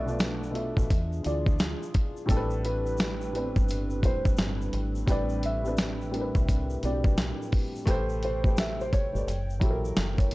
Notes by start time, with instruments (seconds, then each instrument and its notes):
Already playing: fingered electric bass B1, upright piano B2 A3 F4 D5, analog synth pad A3 D4 B4, felt piano E5
0.06 upright piano B2 A3 F4, shaker
0.10 upright piano D5
0.19 snare, closed hi-hat, shaker
0.43 shaker
0.51 upright piano B2 A3 F4
0.55 upright piano E5, closed hi-hat
0.77 fingered electric bass A1, kick, shaker
0.90 fingered electric bass E2, analog synth pad D4 F4 G#4, kick, closed hi-hat, shaker
1.13 shaker
1.23 fingered electric bass D2, upright piano E3 D4 F4, felt piano D5, closed hi-hat, shaker
1.27 upright piano G#4
1.46 kick, shaker
1.59 snare, closed hi-hat, shaker
1.83 shaker
1.94 kick, closed hi-hat
2.17 shaker
2.26 fingered electric bass A1, upright piano A2 G3 C4 D4, analog synth pad G3 C4 B4, kick, shaker
2.30 felt piano A4, upright piano A4, closed hi-hat
2.37 upright piano B4
2.50 shaker
2.65 felt piano B4, closed hi-hat
2.86 shaker
2.97 snare, closed hi-hat, shaker
3.21 shaker
3.32 upright piano A2 G3 B3 D4, closed hi-hat
3.36 upright piano B4
3.41 upright piano C4
3.56 fingered electric bass G1, kick, shaker
3.68 closed hi-hat, shaker
3.90 shaker
4.02 fingered electric bass E1, upright piano A2 G3 C4 D4, felt piano C5, kick, closed hi-hat, shaker
4.06 upright piano B4
4.25 kick, shaker
4.37 fingered electric bass G1, snare, closed hi-hat, shaker
4.61 shaker
4.73 fingered electric bass G#1, closed hi-hat
4.95 shaker
5.06 fingered electric bass A1, upright piano A2 G3 C4 D4, analog synth pad B4, kick, closed hi-hat, shaker
5.10 upright piano B4, felt piano D5
5.29 shaker
5.43 felt piano E5, closed hi-hat
5.63 upright piano A2 G3 C4 D4, shaker
5.68 upright piano B4
5.77 snare, closed hi-hat, shaker
6.02 shaker
6.10 upright piano A2 G3 C4 D4, closed hi-hat
6.15 upright piano A#4
6.21 upright piano B4
6.35 fingered electric bass C2, kick, shaker
6.48 kick, closed hi-hat, shaker
6.70 shaker
6.83 fingered electric bass B1, upright piano A2 G3 C4 D4, felt piano D5, closed hi-hat, shaker
6.87 upright piano F#4
6.94 upright piano G4
7.04 kick, shaker
7.18 snare, closed hi-hat, shaker
7.42 shaker
7.52 kick, open hi-hat
7.76 shaker
7.86 fingered electric bass A1, analog synth pad B2 C3 G5, upright piano A3 G4 B4, kick, closed hi-hat, shaker
7.90 upright piano C5
8.09 shaker
8.23 felt piano C5, closed hi-hat
8.44 upright piano A3 G4 B4, kick, shaker
8.49 upright piano C5
8.57 felt piano E5, snare, closed hi-hat, shaker
8.81 felt piano C5, shaker
8.93 felt piano C#5, kick, closed hi-hat, shaker
9.13 fingered electric bass G1, upright piano A3 G4 B4, shaker
9.18 upright piano D5
9.26 fingered electric bass F#1, analog synth pad E3 A#3, closed hi-hat, shaker
9.50 shaker
9.60 fingered electric bass A#1, upright piano F#3 E4 G4, kick, closed hi-hat
9.64 upright piano A4
9.71 upright piano A#4
9.85 shaker
9.96 fingered electric bass F#1, snare, closed hi-hat, shaker
10.18 upright piano C#5, kick, closed hi-hat, shaker
10.31 closed hi-hat